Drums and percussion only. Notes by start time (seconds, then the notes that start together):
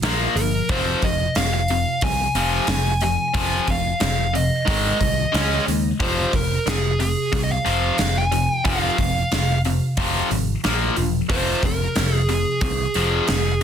0.02 snare, open hi-hat
0.37 open hi-hat
0.69 kick, open hi-hat
1.02 kick, open hi-hat
1.35 snare, open hi-hat
1.68 open hi-hat
2.01 kick, open hi-hat
2.35 open hi-hat
2.67 snare, open hi-hat
3.01 open hi-hat
3.34 kick, open hi-hat
3.67 kick, open hi-hat
4.00 snare, open hi-hat
4.35 open hi-hat
4.68 kick, open hi-hat
5.01 kick, open hi-hat
5.34 snare, open hi-hat
5.68 open hi-hat
6.00 kick, open hi-hat
6.33 kick, open hi-hat
6.67 snare, open hi-hat
7.00 open hi-hat
7.33 kick, open hi-hat
7.66 open hi-hat
7.98 snare, open hi-hat
8.32 open hi-hat
8.65 kick, open hi-hat
8.98 kick, open hi-hat
9.32 snare, open hi-hat
9.65 open hi-hat
9.97 kick, open hi-hat
10.31 open hi-hat
10.64 snare, open hi-hat
10.96 open hi-hat
11.30 kick, open hi-hat
11.63 kick, open hi-hat
11.95 snare, open hi-hat
12.29 open hi-hat
12.61 kick, open hi-hat
12.94 open hi-hat
13.28 snare, open hi-hat